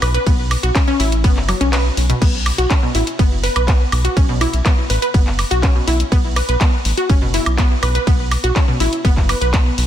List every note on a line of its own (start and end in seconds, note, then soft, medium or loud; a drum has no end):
0.02 0.18 B1 loud
0.02 0.10 B4 medium
0.02 open hi-hat loud
0.02 high woodblock medium
0.14 0.22 B4 medium
0.14 closed hi-hat medium
0.26 0.56 B1 loud
0.26 0.34 B3 medium
0.26 kick loud
0.26 closed hi-hat medium
0.26 ride medium
0.51 open hi-hat loud
0.51 high woodblock medium
0.63 0.71 B1 medium
0.63 0.71 F#4 medium
0.63 closed hi-hat medium
0.75 0.83 C#4 medium
0.75 kick loud
0.75 clap loud
0.75 closed hi-hat medium
0.75 ride medium
0.88 0.95 C#4 loud
1.00 1.26 A1 medium
1.00 1.11 E4 medium
1.00 open hi-hat loud
1.12 closed hi-hat medium
1.24 1.54 F#1 medium
1.24 1.29 B3 loud
1.24 kick loud
1.24 closed hi-hat medium
1.24 ride medium
1.37 clap soft
1.48 1.56 F#3 medium
1.48 open hi-hat loud
1.48 high woodblock medium
1.61 1.90 B1 medium
1.61 1.65 C#4 medium
1.61 closed hi-hat medium
1.73 1.80 B4 medium
1.73 clap loud
1.73 closed hi-hat medium
1.73 ride medium
1.97 2.13 B1 medium
1.97 open hi-hat loud
2.10 2.14 B2 medium
2.10 closed hi-hat medium
2.22 2.51 B1 loud
2.22 2.29 B3 medium
2.22 kick loud
2.22 closed hi-hat medium
2.22 crash medium
2.22 ride medium
2.46 open hi-hat loud
2.46 high woodblock medium
2.58 2.66 B1 medium
2.58 2.66 F#4 medium
2.58 closed hi-hat medium
2.70 2.78 C#4 medium
2.70 kick loud
2.70 clap loud
2.70 closed hi-hat medium
2.70 ride medium
2.83 2.90 B2 medium
2.95 3.03 A1 medium
2.95 3.06 E4 medium
2.95 open hi-hat loud
3.07 closed hi-hat medium
3.19 3.49 F#1 loud
3.19 3.24 B3 loud
3.19 kick loud
3.19 closed hi-hat medium
3.19 ride medium
3.43 3.51 B4 medium
3.43 open hi-hat loud
3.56 3.85 B1 medium
3.56 3.63 B4 medium
3.56 closed hi-hat medium
3.56 high woodblock medium
3.68 3.76 B3 medium
3.68 kick loud
3.68 clap loud
3.68 closed hi-hat medium
3.68 ride medium
3.92 4.08 B1 loud
3.92 open hi-hat loud
3.92 high woodblock medium
4.05 4.12 F#4 medium
4.05 closed hi-hat medium
4.17 4.46 B1 loud
4.17 4.24 C#4 medium
4.17 kick loud
4.17 closed hi-hat medium
4.17 ride medium
4.29 4.37 B2 medium
4.41 4.53 E4 medium
4.41 open hi-hat loud
4.41 high woodblock medium
4.53 4.61 B1 medium
4.53 closed hi-hat medium
4.65 4.70 B3 loud
4.65 kick loud
4.65 clap loud
4.65 closed hi-hat medium
4.65 ride medium
4.90 4.98 A1 medium
4.90 4.98 B4 medium
4.90 open hi-hat loud
5.02 5.10 B4 medium
5.02 closed hi-hat medium
5.14 5.44 F#1 loud
5.14 5.22 B3 medium
5.14 kick loud
5.14 closed hi-hat medium
5.14 ride medium
5.27 clap soft
5.39 open hi-hat loud
5.39 high woodblock medium
5.51 5.81 B1 medium
5.51 5.58 F#4 medium
5.51 closed hi-hat medium
5.63 5.71 C#4 medium
5.63 kick loud
5.63 clap loud
5.63 closed hi-hat medium
5.63 ride medium
5.75 5.83 B2 medium
5.87 6.03 B1 loud
5.87 5.99 E4 medium
5.87 open hi-hat loud
6.00 closed hi-hat medium
6.12 6.42 B1 loud
6.12 6.16 B3 loud
6.12 kick loud
6.12 closed hi-hat medium
6.12 ride medium
6.36 6.44 B4 medium
6.36 open hi-hat loud
6.36 high woodblock medium
6.49 6.56 B1 medium
6.49 6.56 B4 medium
6.49 closed hi-hat medium
6.61 6.68 B3 medium
6.61 kick loud
6.61 clap loud
6.61 closed hi-hat medium
6.61 ride medium
6.85 6.93 A1 medium
6.85 open hi-hat loud
6.97 7.05 F#4 medium
6.97 closed hi-hat medium
7.09 7.39 F#1 loud
7.09 7.17 C#4 medium
7.09 kick loud
7.09 closed hi-hat medium
7.09 ride medium
7.22 7.29 B2 medium
7.34 7.45 E4 medium
7.34 open hi-hat loud
7.46 7.76 B1 medium
7.46 closed hi-hat medium
7.46 high woodblock medium
7.58 7.63 B3 loud
7.58 kick loud
7.58 clap loud
7.58 closed hi-hat medium
7.58 ride medium
7.83 7.98 B1 loud
7.83 7.90 B4 medium
7.83 open hi-hat loud
7.83 high woodblock medium
7.95 8.02 B4 medium
7.95 closed hi-hat medium
8.07 8.37 B1 loud
8.07 8.15 B3 medium
8.07 kick loud
8.07 closed hi-hat soft
8.07 ride medium
8.31 open hi-hat loud
8.31 high woodblock medium
8.44 8.51 B1 medium
8.44 8.51 F#4 medium
8.44 closed hi-hat medium
8.56 8.63 C#4 medium
8.56 kick loud
8.56 clap loud
8.56 closed hi-hat soft
8.56 ride medium
8.68 8.76 B2 medium
8.80 8.88 A1 medium
8.80 8.92 E4 medium
8.80 open hi-hat loud
8.93 closed hi-hat medium
9.05 9.34 F#1 medium
9.05 9.09 B3 loud
9.05 kick loud
9.05 closed hi-hat soft
9.05 ride medium
9.17 kick medium
9.17 clap soft
9.29 9.37 B4 medium
9.29 open hi-hat loud
9.29 high woodblock medium
9.41 9.71 B1 medium
9.41 9.49 B4 medium
9.41 closed hi-hat medium
9.54 9.61 B3 medium
9.54 kick loud
9.54 clap loud
9.54 closed hi-hat medium
9.54 ride medium
9.78 9.87 B1 medium
9.78 open hi-hat loud